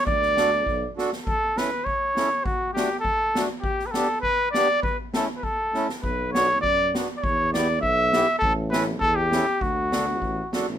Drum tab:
SD |-oo---oo|--o---o-|--o---o-|-oo---o-|
BD |o---o---|o---o---|o---o---|o---o---|

SD |--o---oo|--o---o-|--o---o-|--o---o-|
BD |o---o---|o---o---|o---o---|o---o---|

SD |--o---o-|
BD |o---o---|